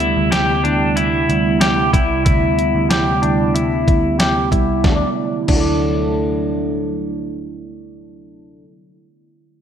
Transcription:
Already playing: picked electric bass D2, ambient pad C3 G3 B3 E4, clean electric guitar E4
0.00 closed hi-hat
0.17 picked electric bass D2
0.32 clean electric guitar G4, snare, closed hi-hat
0.64 picked electric bass D2, clean electric guitar D4, closed hi-hat
0.96 clean electric guitar E4, closed hi-hat
1.29 picked electric bass D2, closed hi-hat
1.61 clean electric guitar G4, snare, closed hi-hat
1.93 picked electric bass C2, clean electric guitar E4, kick, closed hi-hat
2.25 picked electric bass D2, clean electric guitar E4, kick, closed hi-hat
2.59 closed hi-hat
2.75 picked electric bass D2
2.90 clean electric guitar G4, snare, closed hi-hat
3.22 picked electric bass D2, clean electric guitar D4, closed hi-hat
3.55 clean electric guitar E4, closed hi-hat
3.88 picked electric bass D2, kick, closed hi-hat
4.19 clean electric guitar G4, snare, closed hi-hat
4.52 picked electric bass C2, clean electric guitar E4, kick, closed hi-hat
4.84 picked electric bass D2, ambient pad D3 F#3 A3 E4, clean electric guitar D4 F#4, kick, snare
4.92 clean electric guitar A4 D5
5.48 picked electric bass D2, clean electric guitar D4, kick, crash
5.52 clean electric guitar F#4
5.56 clean electric guitar A4 D5

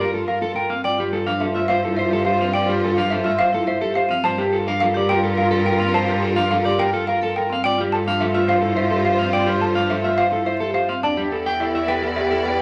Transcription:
Already playing: cello G2, violin section F4 A#4
0.01 clean electric guitar A#4
0.11 french horn F4, vibraphone F4, clean electric guitar A4
0.28 clean electric guitar A#4, xylophone F5
0.40 french horn F4, vibraphone A4, clean electric guitar A4
0.55 clean electric guitar A#4, xylophone G5
0.69 vibraphone C4, clean electric guitar F5
0.84 cello G2, french horn F4, violin section F4 C5, clean electric guitar D5, xylophone G5
0.98 vibraphone F4, clean electric guitar G4
1.13 french horn F4, clean electric guitar A4
1.26 vibraphone D4, clean electric guitar F5
1.40 french horn F4, clean electric guitar A4, xylophone E5
1.54 vibraphone F4, clean electric guitar E5
1.68 clean electric guitar C5, xylophone F5
1.73 french horn F4
1.82 vibraphone E4, clean electric guitar A4
1.97 clean electric guitar C5, xylophone E5
2.02 french horn F4
2.11 vibraphone G4, clean electric guitar A4
2.25 clean electric guitar C5, xylophone F5
2.32 french horn F4
2.39 vibraphone C4, clean electric guitar F5
2.53 clean electric guitar D5, xylophone G5
2.61 french horn F4
2.68 vibraphone F4, clean electric guitar G4
2.84 clean electric guitar A4
2.91 french horn F4
2.96 vibraphone D4, clean electric guitar F5
3.10 clean electric guitar A4, xylophone E5
3.20 french horn F4
3.24 vibraphone F4, clean electric guitar E5
3.39 clean electric guitar C5, xylophone F5
3.51 vibraphone E4, french horn F4, clean electric guitar A4
3.67 clean electric guitar C5, xylophone E5
3.81 french horn F4, vibraphone G4, clean electric guitar A4
3.95 clean electric guitar C5, xylophone F5
4.09 vibraphone C4, clean electric guitar F5
4.23 cello G2, violin section F4 A#4, french horn F4, clean electric guitar C5, xylophone A5
4.38 vibraphone G4, clean electric guitar G4
4.53 french horn F4, clean electric guitar A4
4.66 vibraphone D4, clean electric guitar F5
4.80 french horn F4, clean electric guitar A4, xylophone F5
4.94 vibraphone G4, clean electric guitar D5
5.09 french horn F4, clean electric guitar A#4, xylophone G5
5.23 vibraphone F4, clean electric guitar A4
5.37 clean electric guitar A#4, xylophone F5
5.42 french horn F4
5.51 clean electric guitar A4, vibraphone A4
5.65 clean electric guitar A#4, xylophone G5
5.71 french horn F4
5.79 vibraphone C4, clean electric guitar F5
5.94 clean electric guitar C5, xylophone A5
6.02 french horn F4
6.08 clean electric guitar G4, vibraphone G4
6.22 clean electric guitar A4
6.31 french horn F4
6.36 vibraphone D4, clean electric guitar F5
6.51 clean electric guitar A4, xylophone F5
6.60 french horn F4
6.65 vibraphone G4, clean electric guitar D5
6.79 clean electric guitar A#4, xylophone G5
6.90 french horn F4, vibraphone F4, clean electric guitar A4
7.07 clean electric guitar A#4, xylophone F5
7.19 french horn F4, vibraphone A4, clean electric guitar A4
7.36 clean electric guitar A#4, xylophone G5
7.50 vibraphone C4, clean electric guitar F5
7.64 cello G2, violin section F4 C5, french horn F4, clean electric guitar D5, xylophone G5
7.78 vibraphone F4, clean electric guitar G4
7.92 french horn F4, clean electric guitar A4, xylophone A5
8.06 vibraphone D4, clean electric guitar F5
8.20 french horn F4, clean electric guitar A4, xylophone E5
8.34 vibraphone F4, clean electric guitar E5
8.48 clean electric guitar C5, xylophone F5
8.53 french horn F4
8.62 vibraphone E4, clean electric guitar A4
8.76 clean electric guitar C5, xylophone E5
8.82 french horn F4
8.90 vibraphone G4, clean electric guitar A4
9.05 clean electric guitar C5, xylophone F5
9.11 french horn F4
9.19 vibraphone C4, clean electric guitar F5
9.33 clean electric guitar D5, xylophone G5
9.41 french horn F4
9.47 vibraphone F4, clean electric guitar G4
9.61 clean electric guitar A4, xylophone A5
9.70 french horn F4
9.75 vibraphone D4, clean electric guitar F5
9.90 clean electric guitar A4, xylophone E5
10.00 french horn F4
10.04 vibraphone F4, clean electric guitar E5
10.18 clean electric guitar C5, xylophone F5
10.30 vibraphone E4, french horn F4, clean electric guitar A4
10.46 clean electric guitar C5, xylophone E5
10.59 french horn F4, vibraphone G4, clean electric guitar A4
10.74 clean electric guitar C5, xylophone F5
10.89 vibraphone C4, clean electric guitar F5
11.03 cello E2, vibraphone D4, violin section E4 D5, french horn G4, clean electric guitar D5, xylophone A5
11.17 clean electric guitar G4
11.32 french horn G4, vibraphone A4, clean electric guitar A4
11.46 clean electric guitar G5
11.60 vibraphone E4, french horn G4, clean electric guitar A4, xylophone E5
11.75 clean electric guitar E5
11.88 french horn G4, vibraphone A4, clean electric guitar B4, xylophone G5
12.02 clean electric guitar A4
12.16 vibraphone G4, clean electric guitar B4, xylophone E5
12.20 french horn G4
12.31 clean electric guitar A4
12.45 vibraphone B4, clean electric guitar B4, xylophone G5
12.51 french horn G4

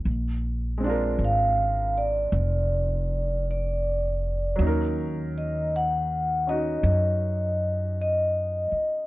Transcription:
0.05 upright bass A#1
0.78 grand piano G#3 C4
0.84 grand piano D4 F4, vibraphone D5
0.89 grand piano A#4
1.19 upright bass G#1
1.24 vibraphone F5
1.98 vibraphone D5
2.32 upright bass F1
3.51 vibraphone D5
4.56 upright bass D#2, grand piano F#3 C#4
4.61 grand piano D#4
4.67 grand piano A#4
5.38 vibraphone D#5
5.76 vibraphone F#5
6.47 grand piano C#4 D#4 F#4, vibraphone D#5
6.83 upright bass F#2
8.01 vibraphone D#5
8.72 muted upright bass stroke

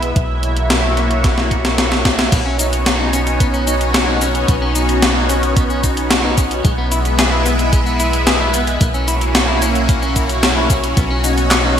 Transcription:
Already playing: analog synth bass B1, analog synth pad G#3 B3 E4 B4 E5
0.03 closed hi-hat
0.16 analog synth bass B1, analog synth pad A#3 F#4 C#5, kick, closed hi-hat
0.43 closed hi-hat
0.57 closed hi-hat
0.70 snare, closed hi-hat
0.97 snare, closed hi-hat
1.11 closed hi-hat
1.24 kick, snare, closed hi-hat
1.38 snare
1.51 kick, closed hi-hat
1.65 snare, closed hi-hat
1.78 snare, closed hi-hat
1.92 snare
2.05 kick, snare, closed hi-hat
2.19 snare, closed hi-hat
2.32 analog synth bass B1, clean electric guitar B3, analog synth pad B3 C#4 D#4 F#4 C#5, kick, closed hi-hat, crash, shaker
2.46 clean electric guitar C#4
2.59 clean electric guitar D#4, closed hi-hat, shaker
2.73 closed hi-hat, shaker
2.86 clean electric guitar F#4, snare, closed hi-hat, shaker
3.00 clean electric guitar D#4
3.13 clean electric guitar C#4, closed hi-hat, shaker
3.27 closed hi-hat, shaker
3.40 clean electric guitar B3, kick, closed hi-hat, shaker
3.54 clean electric guitar C#4, shaker
3.67 clean electric guitar D#4, closed hi-hat, shaker
3.81 closed hi-hat, shaker
3.94 clean electric guitar F#4, snare, closed hi-hat, shaker
4.08 clean electric guitar D#4
4.21 clean electric guitar C#4, closed hi-hat, shaker
4.35 closed hi-hat, shaker
4.48 analog synth bass B1, clean electric guitar B3, kick, closed hi-hat, shaker
4.62 clean electric guitar C#4
4.75 clean electric guitar D#4, closed hi-hat, shaker
4.89 closed hi-hat, shaker
5.02 clean electric guitar F#4, snare, closed hi-hat, shaker
5.16 clean electric guitar D#4
5.29 clean electric guitar C#4, closed hi-hat, shaker
5.43 closed hi-hat, shaker
5.56 clean electric guitar B3, kick, closed hi-hat, shaker
5.70 clean electric guitar C#4, shaker
5.84 clean electric guitar D#4, kick, closed hi-hat, shaker
5.97 closed hi-hat, shaker
6.11 clean electric guitar F#4, snare, closed hi-hat, shaker
6.24 clean electric guitar D#4
6.38 clean electric guitar C#4, kick, closed hi-hat, shaker
6.51 closed hi-hat, shaker
6.65 analog synth bass B1, clean electric guitar G#3, analog synth pad G#3 E4 B4 E5, kick, closed hi-hat, shaker
6.78 clean electric guitar B3
6.92 clean electric guitar E4, closed hi-hat, shaker
7.05 closed hi-hat, shaker
7.19 clean electric guitar G#4, snare, closed hi-hat, shaker
7.32 clean electric guitar E4
7.46 clean electric guitar B3, closed hi-hat, shaker
7.59 closed hi-hat, shaker
7.73 clean electric guitar G#3, kick, closed hi-hat, shaker
7.86 clean electric guitar B3, shaker
8.00 clean electric guitar E4, closed hi-hat, shaker
8.13 closed hi-hat, shaker
8.27 clean electric guitar G#4, snare, closed hi-hat, shaker
8.40 clean electric guitar E4
8.54 clean electric guitar B3, closed hi-hat, shaker
8.67 closed hi-hat, shaker
8.81 analog synth bass B1, analog synth pad A#3 C#4 E4 F#4 C#5, clean electric guitar A#3, kick, closed hi-hat, shaker
8.94 clean electric guitar C#4, shaker
9.08 clean electric guitar E4, closed hi-hat, shaker
9.21 closed hi-hat, shaker
9.35 clean electric guitar F#4, snare, closed hi-hat, shaker
9.48 clean electric guitar E4
9.62 clean electric guitar C#4, closed hi-hat, shaker
9.75 closed hi-hat, shaker
9.89 clean electric guitar A#3, kick, closed hi-hat, shaker
10.02 clean electric guitar C#4, shaker
10.16 clean electric guitar E4, kick, closed hi-hat, shaker
10.29 closed hi-hat, shaker
10.43 clean electric guitar F#4, snare, closed hi-hat, shaker
10.56 clean electric guitar E4
10.70 clean electric guitar C#4, kick, closed hi-hat, shaker
10.84 closed hi-hat, shaker
10.97 analog synth bass B1, clean electric guitar B3, analog synth pad B3 D#4, kick, closed hi-hat, shaker
11.10 clean electric guitar C#4
11.24 clean electric guitar D#4, closed hi-hat, shaker
11.38 closed hi-hat, shaker
11.51 clean electric guitar F#4, snare, clap, closed hi-hat, shaker
11.65 clean electric guitar D#4

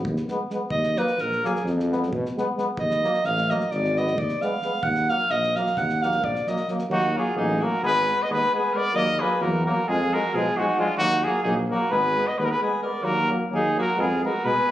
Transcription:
0.05 tuba D#2, kick
0.16 snare
0.28 euphonium G#3, trombone B3, snare
0.50 euphonium G#3, trombone B3, snare
0.70 tuba D#2, alto saxophone D#5, kick
0.83 snare
0.96 euphonium F#3, trombone A#3, alto saxophone B4, snare
1.07 snare
1.18 tuba A#1, alto saxophone A#4, snare
1.32 snare
1.44 euphonium F#3, trombone A#3, alto saxophone G#4, snare
1.56 snare
1.65 tuba F2, snare
1.80 snare
1.91 euphonium G#3, trombone B3, snare
2.03 snare
2.13 tuba B2, kick
2.26 snare
2.36 euphonium G#3, trombone B3, snare
2.56 euphonium G#3, trombone B3, snare
2.77 tuba D#2, alto saxophone D#5, kick
2.91 snare
3.03 euphonium F#3, trombone A#3, snare
3.14 snare
3.24 tuba A1, alto saxophone F5, snare
3.38 snare
3.50 euphonium F#3, trombone A#3, alto saxophone D#5, snare
3.60 snare
3.71 tuba G#1, alto saxophone D5, snare
3.84 snare
3.97 euphonium G#3, trombone B3, alto saxophone D#5, snare
4.07 snare
4.18 tuba D#2, alto saxophone D5, kick
4.29 snare
4.41 euphonium G#3, trombone B3, alto saxophone F5, snare
4.62 euphonium G#3, trombone B3, snare
4.83 tuba D#2, alto saxophone F#5, kick
4.95 snare
5.09 euphonium F#3, trombone A#3, alto saxophone F5, snare
5.19 snare
5.30 tuba A#1, alto saxophone D#5, snare
5.43 snare
5.55 euphonium F#3, trombone A#3, alto saxophone F5, snare
5.66 snare
5.77 tuba D#2, alto saxophone F#5, kick, snare
5.89 snare
6.03 euphonium F#3, trombone A#3, alto saxophone F5, snare
6.12 snare
6.23 tuba A#1, alto saxophone D5, kick
6.35 snare
6.47 euphonium F#3, trombone A#3, alto saxophone D#5, snare
6.57 snare
6.68 euphonium F#3, trombone A#3, snare
6.78 snare
6.89 tuba D#2, euphonium F#3, trombone A#3, alto saxophone D#4, trumpet F#4
7.15 euphonium F#3, trombone A#3, alto saxophone F4, trumpet G#4
7.35 tuba A1, euphonium F#3, trombone A#3, alto saxophone D#4, trumpet G#4
7.61 euphonium F#3, trombone A#3, alto saxophone F#4, trumpet A#4
7.82 tuba G#1, euphonium G#3, trombone B3, alto saxophone G#4, trumpet B4
8.07 euphonium G#3, trombone B3
8.20 alto saxophone B4, trumpet D#5
8.29 tuba D#2, euphonium G#3, trombone B3, alto saxophone G#4, trumpet B4
8.52 euphonium G#3, trombone B3, alto saxophone G#4, trumpet B4
8.73 euphonium G#3, trombone B3, alto saxophone A#4, trumpet D5
8.93 tuba D#2, euphonium F#3, trombone A#3, alto saxophone A#4, trumpet D#5
9.19 euphonium F#3, trombone A#3, alto saxophone G#4, trumpet B4
9.40 tuba E2, euphonium F#3, trombone A#3, alto saxophone F#4, trumpet A#4
9.66 euphonium F#3, trombone A#3, alto saxophone F#4, trumpet A#4
9.88 tuba F2, euphonium F3, trombone G#3, alto saxophone F4, trumpet G#4
10.13 euphonium F3, trombone G#3, alto saxophone F#4, trumpet A#4
10.34 tuba B2, euphonium F3, trombone G#3, alto saxophone F4, trumpet G#4
10.57 euphonium F3, trombone G#3, alto saxophone D#4, trumpet F#4
10.77 euphonium F3, trombone G#3, alto saxophone D4, trumpet F4
10.97 tuba D#2, euphonium F#3, trombone A#3, alto saxophone D#4, trumpet F#4
11.23 euphonium F#3, trombone A#3, alto saxophone F4, trumpet G#4
11.43 tuba A#1, euphonium F#3, trombone A#3, alto saxophone D#4, trumpet G#4
11.69 euphonium F#3, trombone A#3, alto saxophone F#4, trumpet A#4
11.90 tuba G#1, euphonium G#3, trombone B3, alto saxophone G#4, trumpet B4
12.16 euphonium G#3, trombone B3
12.27 alto saxophone B4, trumpet D#5
12.37 tuba D#2, euphonium G#3, trombone B3, alto saxophone G#4, trumpet B4
12.45 alto saxophone F#4, trumpet A#4
12.51 alto saxophone G#4, trumpet B4
12.61 euphonium G#3, trombone B3, alto saxophone G#4, trumpet B4
12.82 euphonium G#3, trombone B3, alto saxophone A#4, trumpet D5
13.02 tuba D#2, euphonium F#3, trombone A#3, alto saxophone F#4, trumpet A#4
13.28 euphonium F#3, trombone A#3
13.49 tuba D#2, euphonium F#3, trombone A#3
13.54 alto saxophone D#4, trumpet G#4
13.75 euphonium F#3, trombone A#3, alto saxophone F#4
13.80 trumpet A#4
13.96 tuba F2, euphonium G#3, trombone B3
14.00 alto saxophone F4, trumpet G#4
14.22 euphonium G#3, trombone B3, alto saxophone F#4, trumpet A#4
14.43 tuba B2, euphonium G#3, trombone B3, trumpet B4
14.47 alto saxophone G#4
14.66 euphonium G#3, trombone B3

